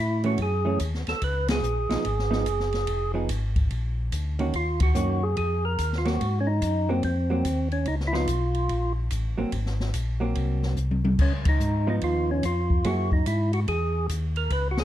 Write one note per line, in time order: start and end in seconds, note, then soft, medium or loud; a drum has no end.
0.00 0.37 A2 medium
0.00 0.23 E4 medium
0.23 0.37 E3 medium
0.23 0.37 A3 medium
0.23 0.38 C#4 medium
0.23 0.40 F#4 medium
0.23 ride soft
0.38 0.79 F#2 medium
0.38 kick soft
0.38 ride soft
0.42 0.79 G#4 medium
0.65 0.78 E3 medium
0.65 0.79 A3 medium
0.65 0.79 C#4 medium
0.80 1.05 D#2 medium
0.80 kick soft
0.80 hi-hat pedal soft
0.80 ride medium
0.94 snare soft
1.07 1.14 D#2 soft
1.07 1.23 A4 medium
1.07 snare soft
1.07 ride soft
1.22 1.62 C#2 medium
1.22 1.48 B4 medium
1.22 kick soft
1.22 ride medium
1.48 3.12 G#4 medium
1.48 snare medium
1.48 ride medium
1.62 1.88 A#1 medium
1.62 hi-hat pedal soft
1.89 1.97 A#1 soft
1.89 2.03 F3 soft
1.89 2.03 B3 medium
1.89 2.04 D#4 medium
1.89 snare soft
1.89 ride soft
2.05 2.45 G#1 medium
2.05 kick soft
2.05 ride soft
2.19 snare soft
2.30 2.44 F3 medium
2.30 2.44 B3 medium
2.30 2.45 D#4 medium
2.30 snare soft
2.46 2.86 F#1 medium
2.46 kick soft
2.46 hi-hat pedal soft
2.46 ride medium
2.60 snare soft
2.73 snare soft
2.73 ride soft
2.87 3.28 F1 medium
2.87 kick soft
2.87 ride medium
3.14 3.28 F3 soft
3.14 3.28 B3 soft
3.14 3.28 D#4 soft
3.14 3.28 G#4 soft
3.29 3.69 G#1 medium
3.29 kick soft
3.29 hi-hat pedal soft
3.29 ride medium
3.56 kick soft
3.56 ride soft
3.70 4.11 A#1 medium
3.70 kick soft
3.70 ride soft
4.12 4.53 D2 medium
4.12 kick soft
4.12 hi-hat pedal soft
4.12 ride medium
4.39 4.52 D#3 medium
4.39 4.53 A#3 medium
4.39 4.53 C#4 medium
4.39 4.53 F#4 medium
4.39 ride soft
4.53 4.94 D#2 medium
4.53 4.80 F4 medium
4.53 kick soft
4.53 ride medium
4.80 5.25 F#4 medium
4.80 kick medium
4.80 ride medium
4.95 5.36 F#2 medium
4.95 5.19 D#3 soft
4.95 5.20 A#3 soft
4.95 5.20 C#4 medium
4.95 5.20 F#4 medium
4.95 hi-hat pedal medium
5.23 5.36 G#4 medium
5.37 5.77 F2 medium
5.37 5.65 G#4 medium
5.37 kick soft
5.37 ride soft
5.65 5.98 A#4 medium
5.78 6.19 D#2 medium
5.78 kick soft
5.78 hi-hat pedal medium
5.78 ride medium
5.93 snare soft
5.98 6.06 F4 medium
6.05 6.19 F#3 medium
6.05 6.19 A#3 medium
6.05 6.19 C4 medium
6.05 6.39 F#4 medium
6.05 snare soft
6.05 ride soft
6.21 6.61 G#2 medium
6.21 kick soft
6.21 ride medium
6.40 6.48 C#4 medium
6.47 6.90 D#4 medium
6.62 7.02 F#2 medium
6.62 kick soft
6.62 hi-hat pedal soft
6.62 ride medium
6.89 7.02 F#3 medium
6.89 7.02 A#3 medium
6.89 7.03 C4 medium
7.03 7.44 F2 medium
7.03 7.68 C4 medium
7.03 kick soft
7.03 ride soft
7.30 7.43 F#3 medium
7.30 7.44 A#3 medium
7.30 7.44 C4 medium
7.45 7.85 D#2 medium
7.45 kick soft
7.45 hi-hat pedal soft
7.45 ride medium
7.72 7.87 C#4 medium
7.72 ride soft
7.85 8.27 C#2 medium
7.85 7.95 D#4 medium
7.85 kick soft
7.85 ride soft
8.00 snare soft
8.07 8.15 E4 medium
8.13 8.26 F3 medium
8.13 8.27 B3 medium
8.13 8.27 D#4 medium
8.13 8.93 F4 medium
8.13 snare soft
8.27 8.68 B1 medium
8.27 kick soft
8.27 hi-hat pedal soft
8.27 ride medium
8.55 ride soft
8.69 9.10 A#1 medium
8.69 kick soft
8.69 ride soft
9.11 9.36 A1 medium
9.11 kick soft
9.11 hi-hat pedal soft
9.11 ride medium
9.38 9.45 A1 soft
9.38 9.51 F#3 medium
9.38 9.51 A#3 medium
9.38 9.51 C4 medium
9.52 9.93 G#1 medium
9.52 kick soft
9.52 ride medium
9.66 snare soft
9.80 snare soft
9.94 10.34 A#1 medium
9.94 kick soft
9.94 hi-hat pedal medium
9.94 ride medium
10.20 10.74 F#3 medium
10.20 10.74 A#3 medium
10.20 10.75 C4 medium
10.35 10.75 C2 medium
10.35 kick soft
10.35 ride soft
10.63 snare soft
10.76 11.17 C2 medium
10.76 hi-hat pedal soft
10.91 high tom soft
11.05 high tom medium
11.19 11.59 C#2 medium
11.19 11.33 C#4 medium
11.19 kick medium
11.19 crash medium
11.45 11.89 D#4 medium
11.45 kick medium
11.45 ride medium
11.60 12.00 G#2 medium
11.60 hi-hat pedal medium
11.87 12.40 F3 medium
11.87 12.40 B3 medium
11.87 12.41 D#4 medium
11.87 11.96 D#4 medium
12.01 12.42 D#2 medium
12.01 12.30 F4 medium
12.01 kick soft
12.01 ride medium
12.31 12.45 C#4 medium
12.43 12.83 F2 medium
12.43 12.87 F4 medium
12.43 kick soft
12.43 hi-hat pedal soft
12.43 ride medium
12.70 kick soft
12.84 13.25 F#2 medium
12.84 13.09 F#3 medium
12.84 13.09 A#3 soft
12.84 13.09 E4 medium
12.84 13.11 F#4 medium
12.84 13.09 G#4 medium
12.84 kick soft
12.84 ride medium
13.12 13.26 D#4 medium
13.12 kick soft
13.26 13.66 G#2 medium
13.26 13.52 E4 medium
13.26 kick soft
13.26 hi-hat pedal medium
13.26 ride medium
13.53 13.60 F#4 medium
13.53 ride soft
13.68 14.08 E2 medium
13.68 14.07 G#4 medium
13.68 kick soft
13.68 ride medium
14.09 14.49 D#2 medium
14.09 kick soft
14.09 hi-hat pedal medium
14.09 ride medium
14.36 14.51 A#4 medium
14.36 ride soft
14.50 14.84 C#2 medium
14.50 14.68 B4 medium
14.50 kick soft
14.50 ride medium
14.71 14.79 F#4 medium
14.77 14.84 G#4 medium
14.77 snare medium